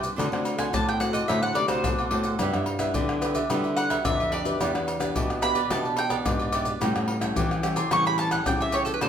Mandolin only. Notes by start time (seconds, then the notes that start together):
0.58 G#5
0.74 A5
0.89 G5
1.00 F#5
1.13 D#5
1.28 E5
1.43 F#5
1.55 D5
1.68 C5
3.77 F#5
4.05 E5
4.32 D5
5.43 B5
5.72 A5
5.98 G5
7.77 C6
7.93 C#6
8.07 B5
8.19 A5
8.32 F#5
8.47 G5
8.62 E5
8.74 C#5
8.85 A4
8.94 B4
9.02 C5